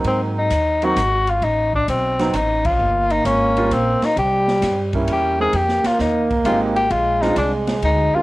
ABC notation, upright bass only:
X:1
M:3/4
L:1/8
Q:"Swing" 1/4=131
K:Ab
V:1 name="Upright bass" clef=bass
A,,2 E,,2 A,,,2 | =A,,,2 _C,,2 A,,,2 | G,,,2 A,,,2 B,,, z | C,,2 G,,2 =E,,2 |
F,, z E,,2 A,,,2 | B,,,2 C,,2 =D,, z |]